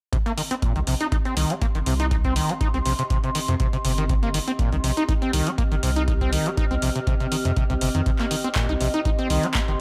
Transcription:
0.13 acid bass C3, ambient pad C4, kick, closed hi-hat
0.21 ambient pad D#5
0.26 acid bass A#3, closed hi-hat
0.34 ambient pad G4
0.38 acid bass D#3, open hi-hat
0.51 acid bass C4, closed hi-hat
0.62 acid bass A#2, kick, closed hi-hat
0.76 sub bass C2, acid bass D#3, closed hi-hat
0.87 sub bass A#1, acid bass C3, open hi-hat
0.93 ambient pad C6
1.01 acid bass D#4, closed hi-hat
1.12 acid bass D#4, kick, closed hi-hat
1.25 acid bass C4, closed hi-hat
1.37 sub bass C2, acid bass D#3, open hi-hat
1.50 acid bass G3, closed hi-hat
1.62 acid bass A#3, kick, closed hi-hat
1.75 sub bass G1, acid bass D#3, closed hi-hat
1.86 sub bass C2, acid bass C3, open hi-hat
2.00 acid bass D#4, closed hi-hat
2.11 acid bass D#4, kick, closed hi-hat
2.24 acid bass C4, kick, closed hi-hat
2.36 acid bass D#3, open hi-hat
2.49 acid bass G3, closed hi-hat
2.61 acid bass D#4, kick, closed hi-hat
2.74 sub bass C2, acid bass C4, closed hi-hat
2.85 sub bass A#1, acid bass C3, open hi-hat
2.99 acid bass C3, closed hi-hat
3.10 acid bass C3, kick, closed hi-hat
3.24 acid bass C3, closed hi-hat
3.35 acid bass D#3, open hi-hat
3.48 sub bass F2, acid bass C3, closed hi-hat
3.60 acid bass C3, kick, closed hi-hat
3.73 acid bass C3, closed hi-hat
3.85 sub bass G1, acid bass C3, open hi-hat
3.98 acid bass D#3, closed hi-hat
4.09 acid bass C3, kick, closed hi-hat
4.23 acid bass A#3, closed hi-hat
4.34 acid bass D#3, open hi-hat
4.48 acid bass C4, closed hi-hat
4.59 acid bass A#2, kick, closed hi-hat
4.72 sub bass C2, acid bass D#3, closed hi-hat
4.84 sub bass A#1, acid bass C3, open hi-hat
4.90 ambient pad F6
4.97 acid bass D#4, closed hi-hat
5.09 acid bass D#4, kick, closed hi-hat
5.22 acid bass C4, closed hi-hat
5.33 sub bass C2, acid bass D#3, open hi-hat
5.47 acid bass G3, closed hi-hat
5.58 acid bass A#3, kick, closed hi-hat
5.72 sub bass G1, acid bass D#3, closed hi-hat
5.83 sub bass C2, acid bass C3, open hi-hat
5.96 acid bass D#4, closed hi-hat
6.08 acid bass D#4, kick, closed hi-hat
6.21 acid bass C4, kick, closed hi-hat
6.33 acid bass D#3, open hi-hat
6.46 acid bass G3, closed hi-hat
6.57 acid bass D#4, kick, closed hi-hat
6.71 sub bass C2, acid bass C4, closed hi-hat
6.82 sub bass A#1, acid bass C3, open hi-hat
6.96 acid bass C3, closed hi-hat
7.07 acid bass C3, kick, closed hi-hat
7.20 acid bass C3, closed hi-hat
7.32 acid bass D#3, open hi-hat
7.45 sub bass F2, acid bass C3, closed hi-hat
7.56 acid bass C3, kick, closed hi-hat
7.70 sub bass C2, acid bass C3, closed hi-hat
7.81 sub bass G1, acid bass C3, open hi-hat
7.95 sub bass F2, acid bass D#3, closed hi-hat
8.06 acid bass C3, kick, closed hi-hat
8.19 acid bass A#3, clap, closed hi-hat
8.31 acid bass D#3, open hi-hat
8.44 acid bass C4, closed hi-hat
8.55 acid bass A#2, kick, clap, closed hi-hat
8.69 sub bass C2, acid bass D#4, closed hi-hat
8.80 sub bass A#1, acid bass C3, open hi-hat
8.86 ambient pad C6
8.94 acid bass D#4, closed hi-hat
9.05 acid bass D#4, kick, closed hi-hat
9.19 acid bass C4, closed hi-hat
9.30 sub bass C2, acid bass D#3, open hi-hat
9.43 acid bass G3, closed hi-hat
9.54 acid bass A#3, kick, clap, closed hi-hat
9.68 sub bass G1, acid bass D#3, closed hi-hat

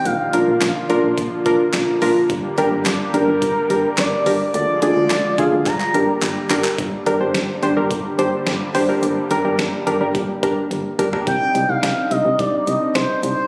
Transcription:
0.05 fm bass A#1, analog synth pad D3 F3 A#3 F4, analog synth lead F5, closed hi-hat
0.33 fm bass A#1, synth keys D4 F4 A#4, closed hi-hat
0.48 fm bass A#1
0.61 fm bass A#1, snare, clap, closed hi-hat
0.89 fm bass A#1, synth keys D4 F4 A#4, closed hi-hat
1.03 fm bass A#1
1.18 fm bass A#1, kick, closed hi-hat
1.46 fm bass A#1, synth keys D4 F4 A#4, kick, closed hi-hat
1.74 fm bass A#1, snare, clap, closed hi-hat
2.02 fm bass A#1, synth keys D4 F4 A#4, open hi-hat
2.30 fm bass G1, analog synth pad G3 G4, kick, closed hi-hat
2.58 fm bass G1, synth keys D4 G4 A#4, closed hi-hat
2.72 fm bass G1
2.86 fm bass G1, snare, clap, closed hi-hat
3.14 fm bass G1, synth keys D4 G4 A#4, analog synth lead A#4, closed hi-hat
3.28 fm bass G1
3.42 fm bass G1, kick, closed hi-hat
3.70 fm bass G1, synth keys D4 G4 A#4, closed hi-hat
3.98 fm bass G1, analog synth lead D5, snare, clap, closed hi-hat
4.26 fm bass G1, synth keys D4 G4 A#4, open hi-hat
4.54 fm bass D2, analog synth pad F3 G#3 F4, analog synth lead D5, closed hi-hat
4.82 fm bass D2, synth keys D4 F4 G#4, analog synth lead D5, closed hi-hat
4.96 fm bass D2
5.10 fm bass D2, snare, clap, closed hi-hat
5.38 fm bass D2, synth keys D4 F4 G#4, analog synth lead F5, kick, closed hi-hat
5.52 fm bass D2
5.66 fm bass G1, analog synth pad G3 A#3 G4, analog synth lead A#5, kick, clap, closed hi-hat
5.80 clap
5.94 fm bass G1, synth keys D4 G4 A#4, closed hi-hat
6.22 fm bass G1, clap, closed hi-hat
6.50 fm bass G1, synth keys D4 G4 A#4, clap, closed hi-hat
6.64 clap
6.78 fm bass G1, analog synth pad D3 G3 A#3 G4, kick, closed hi-hat
7.06 fm bass G1, synth keys D4 G4 A#4, closed hi-hat
7.21 fm bass G1, synth keys D4 G4 C5
7.34 fm bass G1, snare, closed hi-hat
7.63 fm bass G1, synth keys D4 G4 C5, closed hi-hat
7.77 fm bass G1, synth keys D4 G4 A#4
7.91 fm bass G1, kick, closed hi-hat
8.19 fm bass G1, synth keys D4 G4 C5, closed hi-hat
8.47 fm bass G1, snare, closed hi-hat
8.75 fm bass G1, synth keys D4 G4 C5, open hi-hat
8.89 synth keys D4 G4 A#4
9.03 fm bass G1, closed hi-hat
9.31 fm bass G1, synth keys D4 G4 A#4, closed hi-hat
9.45 fm bass G1, synth keys D4 G4 A#4
9.59 fm bass G1, snare, closed hi-hat
9.87 fm bass G1, synth keys D4 G4 A#4, closed hi-hat
10.01 fm bass G1, synth keys D4 G4 A#4
10.15 fm bass G1, kick, closed hi-hat
10.43 fm bass G1, synth keys D4 G4 A#4, kick, closed hi-hat
10.71 fm bass G1, closed hi-hat, high tom
10.99 fm bass G1, synth keys D4 G4 A#4, closed hi-hat, mid tom
11.13 synth keys D4 G4 A#4, floor tom
11.27 fm bass C2, analog synth pad G3 C4 D4 D#4, analog synth lead G5, kick, closed hi-hat
11.55 fm bass C2, closed hi-hat
11.69 fm bass C2, analog synth lead F5
11.83 fm bass C2, snare, closed hi-hat
12.11 fm bass C2, analog synth lead D#5, closed hi-hat
12.25 fm bass C2
12.39 fm bass C2, analog synth lead D5, kick, closed hi-hat
12.67 fm bass C2, analog synth lead D#5, closed hi-hat
12.95 fm bass C2, analog synth lead C5, snare, closed hi-hat
13.23 fm bass C2, analog synth lead C5, closed hi-hat

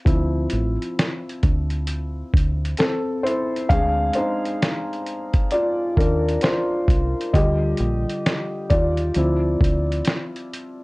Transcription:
0.05 fingered electric bass D2, felt piano F3 C4 E4, kick, closed hi-hat
0.50 fingered electric bass A1, closed hi-hat
0.82 closed hi-hat
0.99 snare, closed hi-hat
1.29 closed hi-hat
1.43 fingered electric bass D2, kick, closed hi-hat
1.70 closed hi-hat
1.87 closed hi-hat
2.34 fingered electric bass D2, kick, closed hi-hat
2.65 closed hi-hat
2.77 felt piano C4 A4, snare, closed hi-hat
3.23 felt piano E4 C5, closed hi-hat
3.56 closed hi-hat
3.69 fingered electric bass D2, felt piano G#3 C4 D4 G#4 F5, kick, closed hi-hat
4.14 felt piano D#4 C5, closed hi-hat
4.46 closed hi-hat
4.62 snare, closed hi-hat
4.93 closed hi-hat
5.07 closed hi-hat
5.34 kick, closed hi-hat
5.51 felt piano F4 D5, closed hi-hat
5.97 fingered electric bass D#2, felt piano D4 A#4, kick, closed hi-hat
6.28 closed hi-hat
6.41 felt piano F4 C5, snare, closed hi-hat
6.88 fingered electric bass C2, kick, closed hi-hat
7.21 closed hi-hat
7.33 fingered electric bass D2, felt piano D3 G3 F4 G4 D#5, kick, closed hi-hat
7.77 fingered electric bass A#1, closed hi-hat
8.10 closed hi-hat
8.26 snare, closed hi-hat
8.70 fingered electric bass D#2, felt piano F4 D5, kick, closed hi-hat
8.97 closed hi-hat
9.14 fingered electric bass D2, felt piano F3 C4 E4, closed hi-hat
9.61 fingered electric bass D2, kick, closed hi-hat
9.92 closed hi-hat
10.05 snare, closed hi-hat
10.36 closed hi-hat
10.53 closed hi-hat

